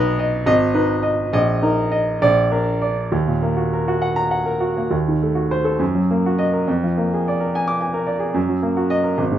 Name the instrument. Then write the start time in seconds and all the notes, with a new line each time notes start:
grand piano
Already playing: B1 D#4 B4 D#5
0.19 D#5
0.46 G#1 D#5
0.74 D#4 B4
1.03 D#5
1.33 A#1 D#5
1.62 D#4 A#4
1.92 D#5
2.22 A#1 D5
2.52 D4 A#4
2.82 D5
3.12 D#2
3.27 A#2
3.42 A#3
3.57 F#4
3.73 A#4
3.88 F#4
4.02 F#5
4.16 A#5
4.31 F#5
4.46 A#4
4.60 F#4
4.77 A#3
4.91 D#2
5.08 D#3
5.22 A3
5.35 F#4
5.51 C5
5.65 A4
5.79 F#2
5.95 F#3
6.11 A#3
6.26 F#4
6.39 D#5
6.53 A#4
6.68 F2
6.83 F3
6.98 A#3
7.13 G#4
7.28 D5
7.40 A#4
7.55 G#5
7.68 D6
7.81 G#5
7.94 A#4
8.07 D5
8.19 G#4
8.34 F#2
8.48 F#3
8.63 A#3
8.77 F#4
8.90 D#5
9.04 A#4
9.18 G#1
9.31 G#2